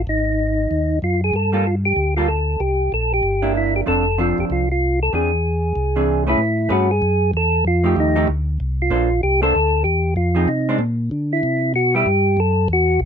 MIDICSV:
0, 0, Header, 1, 4, 480
1, 0, Start_track
1, 0, Tempo, 315457
1, 111, Time_signature, 4, 2, 24, 8
1, 19858, End_track
2, 0, Start_track
2, 0, Title_t, "Tonewheel organ"
2, 0, Program_c, 0, 16
2, 139, Note_on_c, 0, 63, 77
2, 1507, Note_off_c, 0, 63, 0
2, 1580, Note_on_c, 0, 65, 75
2, 1841, Note_off_c, 0, 65, 0
2, 1886, Note_on_c, 0, 68, 78
2, 2059, Note_off_c, 0, 68, 0
2, 2066, Note_on_c, 0, 69, 84
2, 2540, Note_on_c, 0, 65, 78
2, 2545, Note_off_c, 0, 69, 0
2, 2667, Note_off_c, 0, 65, 0
2, 2821, Note_on_c, 0, 67, 85
2, 3262, Note_off_c, 0, 67, 0
2, 3295, Note_on_c, 0, 65, 77
2, 3467, Note_off_c, 0, 65, 0
2, 3474, Note_on_c, 0, 69, 75
2, 3958, Note_on_c, 0, 67, 87
2, 3971, Note_off_c, 0, 69, 0
2, 4453, Note_off_c, 0, 67, 0
2, 4470, Note_on_c, 0, 69, 86
2, 4756, Note_off_c, 0, 69, 0
2, 4773, Note_on_c, 0, 67, 88
2, 5375, Note_off_c, 0, 67, 0
2, 5437, Note_on_c, 0, 64, 74
2, 5692, Note_off_c, 0, 64, 0
2, 5721, Note_on_c, 0, 67, 82
2, 5799, Note_off_c, 0, 67, 0
2, 5905, Note_on_c, 0, 69, 87
2, 6388, Note_off_c, 0, 69, 0
2, 6399, Note_on_c, 0, 65, 78
2, 6682, Note_off_c, 0, 65, 0
2, 6697, Note_on_c, 0, 67, 74
2, 6772, Note_off_c, 0, 67, 0
2, 6878, Note_on_c, 0, 65, 80
2, 7134, Note_off_c, 0, 65, 0
2, 7175, Note_on_c, 0, 65, 80
2, 7603, Note_off_c, 0, 65, 0
2, 7649, Note_on_c, 0, 69, 85
2, 7808, Note_off_c, 0, 69, 0
2, 7835, Note_on_c, 0, 68, 73
2, 9491, Note_off_c, 0, 68, 0
2, 9579, Note_on_c, 0, 64, 73
2, 10223, Note_on_c, 0, 66, 85
2, 10244, Note_off_c, 0, 64, 0
2, 10514, Note_on_c, 0, 68, 109
2, 10515, Note_off_c, 0, 66, 0
2, 11126, Note_off_c, 0, 68, 0
2, 11211, Note_on_c, 0, 69, 91
2, 11634, Note_off_c, 0, 69, 0
2, 11677, Note_on_c, 0, 65, 86
2, 12107, Note_off_c, 0, 65, 0
2, 12172, Note_on_c, 0, 63, 79
2, 12595, Note_off_c, 0, 63, 0
2, 13419, Note_on_c, 0, 65, 89
2, 14018, Note_off_c, 0, 65, 0
2, 14046, Note_on_c, 0, 67, 93
2, 14315, Note_off_c, 0, 67, 0
2, 14347, Note_on_c, 0, 69, 125
2, 14959, Note_off_c, 0, 69, 0
2, 14973, Note_on_c, 0, 67, 90
2, 15431, Note_off_c, 0, 67, 0
2, 15470, Note_on_c, 0, 65, 83
2, 15953, Note_on_c, 0, 63, 74
2, 15968, Note_off_c, 0, 65, 0
2, 16401, Note_off_c, 0, 63, 0
2, 17236, Note_on_c, 0, 64, 81
2, 17842, Note_off_c, 0, 64, 0
2, 17889, Note_on_c, 0, 66, 92
2, 18182, Note_off_c, 0, 66, 0
2, 18196, Note_on_c, 0, 67, 114
2, 18865, Note_on_c, 0, 69, 104
2, 18867, Note_off_c, 0, 67, 0
2, 19296, Note_off_c, 0, 69, 0
2, 19372, Note_on_c, 0, 66, 81
2, 19789, Note_off_c, 0, 66, 0
2, 19858, End_track
3, 0, Start_track
3, 0, Title_t, "Hollow-body jazz guitar"
3, 0, Program_c, 1, 26
3, 2320, Note_on_c, 1, 55, 62
3, 2331, Note_on_c, 1, 58, 63
3, 2339, Note_on_c, 1, 65, 60
3, 2348, Note_on_c, 1, 69, 59
3, 2492, Note_off_c, 1, 55, 0
3, 2498, Note_off_c, 1, 58, 0
3, 2502, Note_off_c, 1, 65, 0
3, 2507, Note_off_c, 1, 69, 0
3, 3302, Note_on_c, 1, 55, 60
3, 3308, Note_on_c, 1, 58, 66
3, 3315, Note_on_c, 1, 65, 64
3, 3318, Note_on_c, 1, 69, 66
3, 3465, Note_off_c, 1, 55, 0
3, 3467, Note_off_c, 1, 58, 0
3, 3471, Note_off_c, 1, 65, 0
3, 3472, Note_off_c, 1, 69, 0
3, 5209, Note_on_c, 1, 62, 73
3, 5211, Note_on_c, 1, 58, 62
3, 5216, Note_on_c, 1, 64, 67
3, 5842, Note_off_c, 1, 62, 0
3, 5843, Note_off_c, 1, 58, 0
3, 5845, Note_off_c, 1, 64, 0
3, 5871, Note_on_c, 1, 53, 53
3, 5879, Note_on_c, 1, 60, 51
3, 5889, Note_on_c, 1, 62, 62
3, 5890, Note_on_c, 1, 69, 58
3, 6140, Note_off_c, 1, 53, 0
3, 6144, Note_off_c, 1, 60, 0
3, 6149, Note_off_c, 1, 62, 0
3, 6149, Note_off_c, 1, 69, 0
3, 6363, Note_on_c, 1, 60, 58
3, 6364, Note_on_c, 1, 53, 54
3, 6370, Note_on_c, 1, 62, 55
3, 6380, Note_on_c, 1, 69, 65
3, 7077, Note_off_c, 1, 60, 0
3, 7078, Note_off_c, 1, 53, 0
3, 7081, Note_off_c, 1, 62, 0
3, 7086, Note_off_c, 1, 69, 0
3, 7802, Note_on_c, 1, 52, 42
3, 7813, Note_on_c, 1, 60, 42
3, 7813, Note_on_c, 1, 62, 46
3, 7820, Note_on_c, 1, 68, 44
3, 8066, Note_off_c, 1, 52, 0
3, 8071, Note_off_c, 1, 62, 0
3, 8072, Note_off_c, 1, 60, 0
3, 8075, Note_off_c, 1, 68, 0
3, 9066, Note_on_c, 1, 52, 54
3, 9074, Note_on_c, 1, 60, 52
3, 9075, Note_on_c, 1, 62, 57
3, 9084, Note_on_c, 1, 68, 61
3, 9512, Note_off_c, 1, 52, 0
3, 9516, Note_off_c, 1, 60, 0
3, 9516, Note_off_c, 1, 62, 0
3, 9521, Note_off_c, 1, 68, 0
3, 9535, Note_on_c, 1, 57, 57
3, 9542, Note_on_c, 1, 61, 59
3, 9549, Note_on_c, 1, 68, 54
3, 9558, Note_on_c, 1, 71, 66
3, 9704, Note_off_c, 1, 57, 0
3, 9708, Note_off_c, 1, 61, 0
3, 9711, Note_off_c, 1, 68, 0
3, 9715, Note_off_c, 1, 71, 0
3, 10176, Note_on_c, 1, 57, 60
3, 10185, Note_on_c, 1, 61, 59
3, 10189, Note_on_c, 1, 68, 68
3, 10197, Note_on_c, 1, 71, 65
3, 10453, Note_off_c, 1, 57, 0
3, 10457, Note_off_c, 1, 61, 0
3, 10459, Note_off_c, 1, 68, 0
3, 10463, Note_off_c, 1, 71, 0
3, 11922, Note_on_c, 1, 53, 66
3, 11929, Note_on_c, 1, 57, 68
3, 11938, Note_on_c, 1, 63, 62
3, 11953, Note_on_c, 1, 67, 71
3, 12378, Note_off_c, 1, 53, 0
3, 12382, Note_off_c, 1, 57, 0
3, 12386, Note_off_c, 1, 63, 0
3, 12394, Note_off_c, 1, 67, 0
3, 12408, Note_on_c, 1, 53, 66
3, 12414, Note_on_c, 1, 57, 69
3, 12419, Note_on_c, 1, 63, 83
3, 12434, Note_on_c, 1, 67, 72
3, 12579, Note_off_c, 1, 53, 0
3, 12582, Note_off_c, 1, 57, 0
3, 12585, Note_off_c, 1, 63, 0
3, 12592, Note_off_c, 1, 67, 0
3, 13547, Note_on_c, 1, 58, 53
3, 13560, Note_on_c, 1, 62, 61
3, 13560, Note_on_c, 1, 69, 51
3, 13562, Note_on_c, 1, 72, 59
3, 13817, Note_off_c, 1, 58, 0
3, 13823, Note_off_c, 1, 62, 0
3, 13823, Note_off_c, 1, 69, 0
3, 13824, Note_off_c, 1, 72, 0
3, 14328, Note_on_c, 1, 58, 61
3, 14335, Note_on_c, 1, 62, 69
3, 14343, Note_on_c, 1, 72, 65
3, 14345, Note_on_c, 1, 69, 68
3, 14498, Note_off_c, 1, 58, 0
3, 14502, Note_off_c, 1, 62, 0
3, 14506, Note_off_c, 1, 72, 0
3, 14507, Note_off_c, 1, 69, 0
3, 15743, Note_on_c, 1, 53, 62
3, 15757, Note_on_c, 1, 68, 57
3, 15763, Note_on_c, 1, 60, 58
3, 15766, Note_on_c, 1, 63, 61
3, 15925, Note_off_c, 1, 53, 0
3, 15932, Note_off_c, 1, 68, 0
3, 15935, Note_off_c, 1, 60, 0
3, 15936, Note_off_c, 1, 63, 0
3, 16262, Note_on_c, 1, 56, 59
3, 16264, Note_on_c, 1, 60, 71
3, 16274, Note_on_c, 1, 62, 70
3, 16424, Note_off_c, 1, 56, 0
3, 16425, Note_off_c, 1, 60, 0
3, 16430, Note_off_c, 1, 62, 0
3, 18175, Note_on_c, 1, 55, 68
3, 18180, Note_on_c, 1, 59, 59
3, 18199, Note_on_c, 1, 64, 73
3, 18339, Note_off_c, 1, 55, 0
3, 18341, Note_off_c, 1, 59, 0
3, 18351, Note_off_c, 1, 64, 0
3, 19858, End_track
4, 0, Start_track
4, 0, Title_t, "Tonewheel organ"
4, 0, Program_c, 2, 16
4, 107, Note_on_c, 2, 32, 83
4, 1022, Note_off_c, 2, 32, 0
4, 1077, Note_on_c, 2, 39, 83
4, 1522, Note_off_c, 2, 39, 0
4, 1553, Note_on_c, 2, 42, 68
4, 2001, Note_off_c, 2, 42, 0
4, 2031, Note_on_c, 2, 43, 82
4, 2946, Note_off_c, 2, 43, 0
4, 2987, Note_on_c, 2, 38, 79
4, 3905, Note_off_c, 2, 38, 0
4, 3959, Note_on_c, 2, 36, 76
4, 4405, Note_off_c, 2, 36, 0
4, 4447, Note_on_c, 2, 34, 68
4, 4890, Note_off_c, 2, 34, 0
4, 4914, Note_on_c, 2, 31, 81
4, 5830, Note_off_c, 2, 31, 0
4, 5892, Note_on_c, 2, 29, 86
4, 6607, Note_off_c, 2, 29, 0
4, 6667, Note_on_c, 2, 29, 34
4, 6758, Note_off_c, 2, 29, 0
4, 6846, Note_on_c, 2, 36, 85
4, 7757, Note_off_c, 2, 36, 0
4, 7805, Note_on_c, 2, 40, 81
4, 8717, Note_off_c, 2, 40, 0
4, 8757, Note_on_c, 2, 36, 82
4, 9672, Note_off_c, 2, 36, 0
4, 9703, Note_on_c, 2, 45, 87
4, 10178, Note_off_c, 2, 45, 0
4, 10201, Note_on_c, 2, 43, 83
4, 10667, Note_off_c, 2, 43, 0
4, 10681, Note_on_c, 2, 42, 86
4, 11147, Note_off_c, 2, 42, 0
4, 11161, Note_on_c, 2, 40, 86
4, 11627, Note_off_c, 2, 40, 0
4, 11636, Note_on_c, 2, 41, 86
4, 12104, Note_off_c, 2, 41, 0
4, 12118, Note_on_c, 2, 39, 92
4, 12585, Note_off_c, 2, 39, 0
4, 12591, Note_on_c, 2, 38, 91
4, 13061, Note_off_c, 2, 38, 0
4, 13086, Note_on_c, 2, 36, 89
4, 13548, Note_off_c, 2, 36, 0
4, 13552, Note_on_c, 2, 34, 87
4, 14021, Note_off_c, 2, 34, 0
4, 14049, Note_on_c, 2, 36, 86
4, 14509, Note_off_c, 2, 36, 0
4, 14536, Note_on_c, 2, 38, 87
4, 14993, Note_off_c, 2, 38, 0
4, 14993, Note_on_c, 2, 40, 85
4, 15460, Note_off_c, 2, 40, 0
4, 15460, Note_on_c, 2, 41, 88
4, 15933, Note_off_c, 2, 41, 0
4, 15943, Note_on_c, 2, 48, 88
4, 16412, Note_on_c, 2, 46, 87
4, 16415, Note_off_c, 2, 48, 0
4, 16889, Note_off_c, 2, 46, 0
4, 16909, Note_on_c, 2, 50, 84
4, 17377, Note_off_c, 2, 50, 0
4, 17395, Note_on_c, 2, 48, 84
4, 17860, Note_off_c, 2, 48, 0
4, 17861, Note_on_c, 2, 47, 91
4, 18332, Note_off_c, 2, 47, 0
4, 18353, Note_on_c, 2, 43, 89
4, 18818, Note_off_c, 2, 43, 0
4, 18822, Note_on_c, 2, 42, 86
4, 19292, Note_off_c, 2, 42, 0
4, 19300, Note_on_c, 2, 40, 93
4, 19770, Note_off_c, 2, 40, 0
4, 19777, Note_on_c, 2, 35, 89
4, 19858, Note_off_c, 2, 35, 0
4, 19858, End_track
0, 0, End_of_file